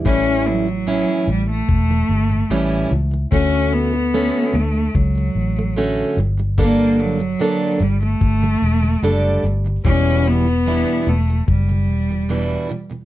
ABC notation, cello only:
X:1
M:4/4
L:1/16
Q:1/4=74
K:Amix
V:1 name="Cello"
C2 F,4 G, A,6- A, z2 | C2 B,4 A,2 F,6 z2 | _B,2 F,4 G, A,6- A, z2 | C2 B,4 A,2 G,6 z2 |]